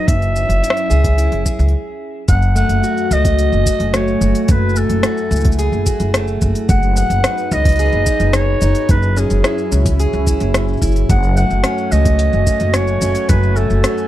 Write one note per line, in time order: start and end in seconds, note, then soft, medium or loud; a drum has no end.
0.00 1.69 F#3 medium
0.00 0.14 B3 medium
0.00 0.13 D#4 medium
0.00 0.13 F#4 medium
0.07 0.44 F#1 loud
0.07 1.73 F#2 medium
0.07 1.71 C#4 medium
0.07 1.71 E4 medium
0.07 1.73 E5 loud
0.07 kick loud
0.07 open hi-hat medium
0.07 shaker soft
0.22 open hi-hat soft
0.22 shaker soft
0.35 2.23 C#4 medium
0.35 shaker medium
0.49 0.60 F#1 medium
0.49 open hi-hat soft
0.49 shaker soft
0.63 1.17 E4 medium
0.63 open hi-hat medium
0.63 shaker soft
0.70 cross-stick loud
0.77 open hi-hat soft
0.77 shaker soft
0.90 1.27 C#2 medium
0.90 1.45 G#4 medium
0.90 shaker medium
1.04 kick medium
1.04 open hi-hat soft
1.04 shaker soft
1.18 1.73 E4 medium
1.18 open hi-hat medium
1.18 shaker soft
1.32 1.42 F#1 medium
1.32 open hi-hat soft
1.46 2.23 G#4 medium
1.46 kick medium
1.46 shaker medium
1.59 1.73 C#2 loud
1.59 open hi-hat soft
1.59 shaker soft
1.68 open hi-hat soft
2.28 2.64 F#1 medium
2.28 4.48 F#2 medium
2.28 6.64 A3 medium
2.28 4.46 F#4 medium
2.28 2.54 F#5 loud
2.28 6.65 G#5 medium
2.28 kick loud
2.28 open hi-hat medium
2.28 shaker soft
2.42 shaker soft
2.56 3.10 A3 medium
2.56 3.14 F#5 loud
2.56 shaker medium
2.69 2.80 F#1 medium
2.69 open hi-hat soft
2.69 shaker soft
2.83 3.65 F#4 medium
2.83 shaker soft
2.97 shaker soft
3.11 3.47 C#2 medium
3.11 3.92 A3 medium
3.11 3.94 D#5 loud
3.11 shaker medium
3.25 kick loud
3.25 open hi-hat soft
3.25 shaker soft
3.39 open hi-hat medium
3.39 shaker soft
3.52 3.63 F#1 medium
3.52 shaker soft
3.66 4.21 F#4 medium
3.66 kick medium
3.66 shaker medium
3.80 4.16 F#1 medium
3.80 open hi-hat soft
3.94 4.75 A3 medium
3.94 4.43 C#5 medium
3.94 cross-stick medium
3.94 open hi-hat medium
3.94 shaker soft
4.08 shaker soft
4.21 4.31 F#1 medium
4.21 5.03 F#4 medium
4.21 shaker medium
4.35 open hi-hat soft
4.35 shaker soft
4.43 4.52 C#5 medium
4.48 4.85 F#1 loud
4.48 6.68 F#2 medium
4.48 6.66 E4 medium
4.48 4.79 B4 medium
4.48 kick loud
4.48 open hi-hat medium
4.48 shaker soft
4.69 shaker soft
4.76 5.30 A3 medium
4.76 5.59 A4 medium
4.76 shaker medium
4.90 5.00 F#1 medium
4.90 open hi-hat soft
4.90 shaker soft
5.03 5.86 F#4 medium
5.03 cross-stick loud
5.03 open hi-hat medium
5.03 shaker soft
5.18 shaker soft
5.31 5.67 C#2 medium
5.31 6.13 A3 medium
5.31 shaker medium
5.36 shaker medium
5.45 kick loud
5.45 open hi-hat soft
5.52 shaker soft
5.59 7.79 G#4 medium
5.59 open hi-hat medium
5.59 shaker soft
5.72 5.83 F#1 medium
5.72 shaker soft
5.86 6.41 F#4 medium
5.86 kick medium
5.86 shaker medium
6.00 6.36 F#1 medium
6.00 open hi-hat soft
6.00 shaker soft
6.14 6.74 A3 medium
6.14 cross-stick loud
6.14 open hi-hat medium
6.14 shaker soft
6.28 shaker soft
6.41 6.52 F#1 medium
6.41 7.24 F#4 medium
6.41 kick medium
6.41 shaker medium
6.55 open hi-hat soft
6.55 shaker soft
6.69 7.05 F#1 loud
6.69 8.88 F#2 medium
6.69 8.87 F#3 medium
6.69 8.87 D#4 medium
6.69 8.87 B4 medium
6.69 6.95 F#5 loud
6.69 kick loud
6.69 open hi-hat medium
6.69 shaker soft
6.83 shaker soft
6.96 7.51 B3 medium
6.96 7.54 F#5 loud
6.96 shaker medium
7.10 7.20 F#1 medium
7.10 open hi-hat soft
7.10 shaker soft
7.24 8.06 D#4 medium
7.24 cross-stick loud
7.24 open hi-hat medium
7.24 shaker soft
7.38 shaker soft
7.51 7.87 C#2 loud
7.51 8.33 B3 medium
7.51 8.35 D#5 loud
7.51 shaker medium
7.65 kick loud
7.65 open hi-hat soft
7.69 open hi-hat soft
7.72 open hi-hat soft
7.76 open hi-hat soft
7.79 9.99 G#4 medium
7.79 open hi-hat medium
7.79 shaker soft
7.82 open hi-hat soft
7.89 open hi-hat soft
7.89 shaker soft
7.93 8.03 F#1 medium
8.06 8.60 D#4 medium
8.06 kick medium
8.06 shaker medium
8.20 8.56 F#1 medium
8.20 open hi-hat soft
8.20 shaker soft
8.33 8.95 B3 medium
8.33 8.92 C#5 loud
8.33 cross-stick loud
8.33 open hi-hat medium
8.33 shaker soft
8.61 8.72 F#1 medium
8.61 8.94 D#4 medium
8.61 shaker medium
8.75 open hi-hat soft
8.75 shaker soft
8.89 9.25 F#1 loud
8.89 11.09 F#2 medium
8.89 11.07 F#3 medium
8.89 11.07 C#4 medium
8.89 11.07 E4 medium
8.89 9.19 B4 medium
8.89 kick loud
8.89 open hi-hat medium
8.89 shaker soft
9.03 shaker soft
9.17 9.72 C#4 medium
9.17 10.00 G#4 medium
9.17 shaker medium
9.30 9.41 F#1 medium
9.30 open hi-hat soft
9.30 shaker soft
9.44 10.26 E4 medium
9.44 cross-stick loud
9.44 shaker soft
9.58 shaker soft
9.72 10.08 C#2 medium
9.72 10.54 C#4 medium
9.72 shaker medium
9.86 kick medium
9.86 open hi-hat soft
9.86 shaker soft
10.00 11.40 G#4 medium
10.00 open hi-hat medium
10.00 shaker soft
10.13 10.34 C#2 medium
10.13 shaker soft
10.27 10.81 E4 medium
10.27 kick medium
10.27 shaker medium
10.40 10.76 F#1 medium
10.40 open hi-hat soft
10.40 shaker soft
10.54 11.37 C#4 medium
10.54 cross-stick loud
10.54 open hi-hat soft
10.54 shaker soft
10.68 shaker soft
10.73 shaker soft
10.77 shaker soft
10.82 11.02 F#1 medium
10.82 11.15 E4 medium
10.82 kick medium
10.82 shaker medium
10.92 shaker soft
10.96 open hi-hat soft
10.96 shaker soft
11.09 11.45 F#1 loud
11.09 13.29 F#2 medium
11.09 14.08 A3 medium
11.09 14.08 F#4 medium
11.09 11.35 F#5 loud
11.09 14.08 G#5 medium
11.09 kick loud
11.09 open hi-hat medium
11.09 shaker soft
11.23 shaker soft
11.37 11.90 A3 medium
11.37 11.94 F#5 loud
11.37 shaker medium
11.50 11.61 F#1 medium
11.50 shaker soft
11.64 12.46 C#4 medium
11.64 cross-stick medium
11.64 open hi-hat medium
11.64 shaker soft
11.78 shaker soft
11.92 12.28 C#2 medium
11.92 12.73 A3 medium
11.92 12.76 D#5 loud
11.92 shaker medium
12.05 kick loud
12.05 open hi-hat soft
12.05 shaker soft
12.19 open hi-hat medium
12.19 shaker soft
12.33 12.44 F#1 medium
12.33 shaker soft
12.47 13.01 C#4 medium
12.47 kick medium
12.47 shaker medium
12.60 12.97 F#1 medium
12.60 open hi-hat soft
12.60 shaker soft
12.74 13.56 A3 medium
12.74 13.30 C#5 medium
12.74 cross-stick medium
12.74 open hi-hat medium
12.74 shaker soft
12.87 shaker soft
13.01 13.12 F#1 medium
13.01 13.83 C#4 medium
13.01 shaker medium
13.15 open hi-hat soft
13.15 shaker soft
13.29 13.65 F#1 loud
13.29 14.08 F#2 medium
13.29 13.58 B4 medium
13.29 kick loud
13.29 open hi-hat medium
13.29 shaker soft
13.43 shaker soft
13.56 14.08 A3 medium
13.56 14.08 A4 medium
13.56 shaker medium
13.70 13.81 F#1 medium
13.70 shaker soft
13.84 14.08 C#4 medium
13.84 cross-stick medium
13.84 open hi-hat medium
13.84 shaker soft
13.98 shaker soft